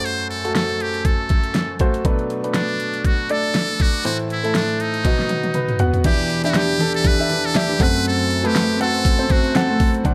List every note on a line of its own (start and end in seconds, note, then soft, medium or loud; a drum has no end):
0.00 1.76 F#2 soft
0.00 1.76 F#3 soft
0.00 0.30 A3 medium
0.00 0.31 F#4 medium
0.00 0.31 C5 medium
0.05 0.30 C5 medium
0.05 closed hi-hat medium
0.20 closed hi-hat soft
0.30 0.54 A4 medium
0.30 closed hi-hat soft
0.45 1.14 A3 medium
0.45 1.14 F#4 medium
0.45 1.15 A4 medium
0.45 closed hi-hat soft
0.55 0.83 A4 medium
0.55 snare medium
0.55 closed hi-hat medium
0.69 closed hi-hat soft
0.80 1.07 G4 medium
0.80 closed hi-hat medium
0.94 closed hi-hat soft
1.05 1.80 A4 medium
1.05 kick medium
1.05 closed hi-hat medium
1.29 kick medium
1.29 closed hi-hat medium
1.44 closed hi-hat soft
1.54 snare medium
1.54 closed hi-hat medium
1.79 1.99 A3 medium
1.79 1.99 F#4 medium
1.79 1.99 C5 medium
1.79 kick medium
1.79 closed hi-hat medium
1.94 closed hi-hat soft
2.05 4.01 B2 medium
2.05 4.01 F#3 medium
2.05 2.32 A3 medium
2.05 2.32 D4 medium
2.05 2.32 B4 medium
2.05 kick medium
2.05 closed hi-hat medium
2.19 closed hi-hat soft
2.30 closed hi-hat soft
2.44 3.04 A3 medium
2.44 3.04 D4 medium
2.44 3.05 B4 medium
2.44 closed hi-hat soft
2.54 3.07 D4 medium
2.54 snare medium
2.54 closed hi-hat medium
2.69 closed hi-hat soft
2.80 closed hi-hat medium
2.94 closed hi-hat soft
3.05 3.33 F#4 medium
3.05 kick medium
3.05 closed hi-hat medium
3.29 3.83 A3 medium
3.29 3.84 D4 medium
3.29 3.83 A4 medium
3.29 3.84 D5 medium
3.29 closed hi-hat medium
3.44 closed hi-hat soft
3.54 snare medium
3.54 closed hi-hat medium
3.80 4.06 F#4 medium
3.80 kick medium
3.80 closed hi-hat medium
3.94 closed hi-hat soft
4.05 5.01 A2 soft
4.05 5.01 E3 soft
4.05 4.32 A3 medium
4.05 4.31 E4 medium
4.05 4.17 F#4 medium
4.05 4.32 C5 medium
4.05 closed hi-hat medium
4.19 closed hi-hat soft
4.30 4.54 E4 medium
4.30 closed hi-hat medium
4.43 5.05 A3 medium
4.43 5.05 E4 medium
4.43 5.05 A4 medium
4.43 closed hi-hat soft
4.55 4.83 D4 medium
4.55 snare medium
4.55 closed hi-hat medium
4.69 closed hi-hat soft
4.80 5.81 D#4 medium
4.80 closed hi-hat medium
4.94 closed hi-hat soft
5.05 6.01 B2 medium
5.05 6.01 F#3 medium
5.05 5.66 B3 medium
5.05 5.66 F#4 medium
5.05 5.66 D#5 medium
5.05 kick medium
5.05 snare soft
5.05 closed hi-hat medium
5.19 snare soft
5.29 closed hi-hat medium
5.29 high tom medium
5.43 closed hi-hat soft
5.43 high tom medium
5.54 6.02 B4 medium
5.54 closed hi-hat medium
5.54 mid tom medium
5.68 closed hi-hat soft
5.68 mid tom medium
5.79 5.98 B3 medium
5.79 5.98 F#4 medium
5.79 5.98 F#5 medium
5.79 closed hi-hat medium
5.79 floor tom medium
5.93 closed hi-hat soft
5.93 floor tom medium
6.04 7.76 E2 medium
6.04 7.76 B2 medium
6.04 6.44 E3 medium
6.04 6.32 D4 medium
6.04 6.44 D4 loud
6.04 6.32 G4 medium
6.04 6.43 G4 medium
6.04 6.42 G4 medium
6.04 6.42 B4 loud
6.04 6.32 E5 medium
6.04 kick loud
6.04 closed hi-hat medium
6.04 crash medium
6.18 closed hi-hat soft
6.30 closed hi-hat medium
6.43 6.70 D4 medium
6.43 6.79 D4 soft
6.43 6.70 G4 medium
6.43 6.80 G4 medium
6.43 6.52 G4 medium
6.43 6.79 B4 medium
6.43 6.71 E5 medium
6.43 closed hi-hat medium
6.50 6.59 F#4 medium
6.54 6.94 G4 medium
6.54 snare loud
6.54 closed hi-hat medium
6.69 closed hi-hat soft
6.79 7.28 E3 medium
6.79 7.29 D4 medium
6.79 7.07 D4 medium
6.79 7.07 G4 medium
6.79 7.30 G4 medium
6.79 7.07 A4 medium
6.79 7.31 B4 medium
6.79 closed hi-hat medium
6.94 7.09 A4 medium
6.94 closed hi-hat soft
7.05 7.47 B4 medium
7.05 kick medium
7.05 closed hi-hat medium
7.19 7.45 D4 medium
7.19 7.46 G4 medium
7.19 7.46 E5 medium
7.29 7.68 E3 medium
7.29 7.69 D4 medium
7.29 7.68 G4 medium
7.29 7.67 B4 medium
7.29 closed hi-hat medium
7.44 7.59 A4 medium
7.44 closed hi-hat soft
7.55 7.80 D4 medium
7.55 7.80 G4 medium
7.55 7.84 G4 medium
7.55 7.80 E5 medium
7.55 snare loud
7.55 closed hi-hat medium
7.68 7.80 D4 soft
7.68 7.80 G4 medium
7.68 7.79 B4 medium
7.79 8.43 F#2 medium
7.79 9.76 F#2 medium
7.79 8.45 F#3 medium
7.79 8.44 A3 medium
7.79 9.76 A3 medium
7.79 8.45 C4 medium
7.79 8.30 C4 medium
7.79 8.43 F#4 medium
7.79 8.30 A4 medium
7.79 8.42 C5 medium
7.79 8.30 F#5 medium
7.79 kick loud
7.79 open hi-hat medium
7.83 8.06 B4 loud
7.95 closed hi-hat soft
8.05 8.48 A4 medium
8.05 closed hi-hat medium
8.19 closed hi-hat soft
8.30 closed hi-hat medium
8.42 8.79 A3 medium
8.42 8.70 C4 medium
8.42 8.78 C4 soft
8.42 8.80 F#4 medium
8.42 8.70 A4 medium
8.42 8.70 B4 medium
8.42 8.79 C5 medium
8.42 closed hi-hat medium
8.46 8.81 G4 medium
8.56 snare loud
8.56 closed hi-hat medium
8.69 closed hi-hat soft
8.79 9.30 A3 medium
8.79 9.28 C4 medium
8.79 9.07 C4 medium
8.79 9.30 F#4 medium
8.79 9.07 A4 medium
8.79 9.33 A4 medium
8.79 9.31 C5 medium
8.79 9.07 F#5 medium
8.79 closed hi-hat medium
8.95 closed hi-hat soft
9.05 kick medium
9.05 closed hi-hat medium
9.19 9.45 C4 medium
9.19 9.45 A4 medium
9.19 9.45 C5 medium
9.29 9.69 A3 medium
9.29 9.68 C4 medium
9.29 9.68 F#4 medium
9.29 9.57 F#4 medium
9.29 9.67 C5 medium
9.29 kick medium
9.29 closed hi-hat medium
9.44 closed hi-hat soft
9.55 9.92 C4 medium
9.55 9.92 A4 medium
9.55 9.94 A4 medium
9.55 9.92 F#5 medium
9.55 snare loud
9.55 closed hi-hat medium
9.68 10.04 A3 medium
9.68 10.04 C4 soft
9.68 10.04 F#4 medium
9.68 10.04 C5 medium
9.80 kick medium
9.80 open hi-hat medium
9.94 closed hi-hat soft
10.04 10.14 D2 medium
10.04 10.14 A2 medium
10.04 10.14 D3 medium
10.04 10.14 F#3 loud
10.04 10.14 A3 loud
10.04 10.14 D4 loud
10.04 10.14 D4 medium
10.04 10.14 F#4 loud
10.04 10.14 C5 medium
10.04 10.14 C5 loud
10.04 10.14 F#5 medium
10.04 kick loud
10.04 closed hi-hat medium